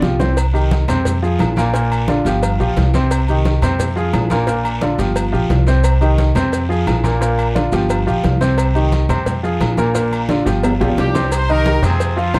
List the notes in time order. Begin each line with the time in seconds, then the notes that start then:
0.02 C2 F3 F4 G4, low bongo, high conga, short guiro, maracas
0.19 C3 C4 C5, low bongo, low timbale, short guiro, maracas
0.37 cowbell, high conga, low agogo, long guiro, maracas
0.53 D#3 D#4 G4, high conga, low agogo, maracas
0.71 cowbell, high conga, low timbale, short guiro, maracas
0.88 F2 C3 C4 C5, cowbell, low conga, low agogo, short guiro, maracas
1.05 cowbell, high conga, low conga, low agogo, long guiro, maracas
1.23 F3 F4 G#4, high conga, maracas
1.39 A#1, cowbell, high conga, low timbale, low agogo, short guiro, maracas
1.56 A#2 A#3 A#4, cowbell, high conga, short guiro, maracas
1.74 A#2 A#3 A#4, cowbell, low agogo, maracas
1.91 high conga, low agogo, maracas
2.08 D3 D4 F4, cowbell, high conga, low timbale, short guiro, maracas
2.25 G1 F3 F4 G4, cowbell, high conga, low agogo, short guiro, maracas
2.43 cowbell, high conga, low agogo, long guiro, maracas
2.59 A#1 F3 F4 G4, high conga, maracas
2.76 C2, cowbell, high conga, low timbale, low agogo, short guiro, maracas
2.94 C3 C4 C5, cowbell, high conga, short guiro, maracas
3.11 cowbell, low agogo, long guiro, maracas
3.28 D#3 D#4 G4, high conga, low agogo, maracas
3.45 cowbell, high conga, low timbale, short guiro, maracas
3.62 F2 C3 C4 C5, cowbell, low conga, low agogo, short guiro, maracas
3.79 cowbell, high conga, low conga, low agogo, long guiro, maracas
3.96 F3 F4 G#4, high conga, maracas
4.13 A#1, cowbell, high conga, low timbale, low agogo, short guiro, maracas
4.30 A#2 A#3 A#4, cowbell, high conga, short guiro, maracas
4.47 A#2 A#3 A#4, cowbell, high conga, low agogo, long guiro, maracas
4.64 high conga, low agogo, maracas
4.81 D3 D4 F4, cowbell, high conga, low timbale, short guiro, maracas
4.98 G1 F3 F4 G4, cowbell, high conga, low agogo, short guiro, maracas
5.15 cowbell, high conga, low agogo, long guiro, maracas
5.32 A#1 F3 F4 G4, high conga, maracas
5.50 C2, cowbell, high conga, low timbale, low agogo, short guiro, maracas
5.67 C3 C4 C5, cowbell, short guiro, maracas
5.84 cowbell, high conga, low agogo, long guiro, maracas
6.01 D#3 D#4 G4, high conga, low agogo, maracas
6.18 cowbell, high conga, low timbale, short guiro, maracas
6.35 F2 C3 C4 C5, cowbell, low conga, low agogo, short guiro, maracas
6.52 cowbell, high conga, low agogo, long guiro, maracas
6.69 F3 F4 G#4, high conga, maracas
6.86 A#1, cowbell, high conga, low timbale, low agogo, short guiro, maracas
7.03 A#2 A#3 A#4, cowbell, high conga, short guiro, maracas
7.20 A#2 A#3 A#4, cowbell, high conga, low agogo, maracas
7.38 high conga, low agogo, maracas
7.55 D3 D4 F4, cowbell, high conga, low timbale, short guiro, maracas
7.72 G1 F3 F4 G4, cowbell, high conga, low agogo, short guiro, maracas
7.89 cowbell, high conga, low agogo, long guiro, maracas
8.07 A#1 F3 F4 G4, high conga, maracas
8.24 C2, cowbell, high conga, low timbale, low agogo, short guiro, maracas
8.41 C3 C4 C5, cowbell, high conga, short guiro, maracas
8.58 cowbell, low agogo, long guiro, maracas
8.75 D#3 D#4 G4, high conga, low agogo, maracas
8.92 cowbell, high conga, low timbale, short guiro, maracas
9.09 F2 C3 C4 C5, cowbell, low conga, low agogo, short guiro, maracas
9.26 cowbell, high conga, low conga, low agogo, long guiro, maracas
9.43 F3 F4 G#4, high conga, maracas
9.60 A#1, cowbell, high conga, low timbale, low agogo, short guiro, maracas
9.77 A#2 A#3 A#4, cowbell, high conga, short guiro, maracas
9.95 A#2 A#3 A#4, cowbell, high conga, low agogo, long guiro, maracas
10.11 high conga, low agogo, maracas
10.29 D3 D4 F4, cowbell, high conga, low timbale, short guiro, maracas
10.45 G1 F3 F4 G4, cowbell, high conga, low agogo, short guiro, maracas
10.63 cowbell, high conga, high timbale, low agogo, long guiro, maracas
10.80 A#1 F3 F4 G4, high bongo, high conga, high timbale, maracas
10.97 C2 C4 D4 G4, cowbell, low bongo, high conga, low timbale, low agogo, short guiro, maracas
11.14 C3 C4 C5, cowbell, low bongo, low timbale, short guiro, maracas
11.31 D#4 G4 C5, cowbell, high conga, low agogo, long guiro, maracas
11.49 D#3 D#4 G4 A#4 D#5, high conga, low agogo, maracas
11.66 cowbell, high conga, low timbale, short guiro, maracas
11.82 F2 C3 C4 F4 G#4 C5, cowbell, low conga, low agogo, short guiro, maracas
12.00 cowbell, high conga, low agogo, long guiro, maracas
12.17 F3 F4 F5, high conga, maracas
12.34 A#1 C4 F4 C5 C6, cowbell, high conga, low timbale, low agogo, short guiro, maracas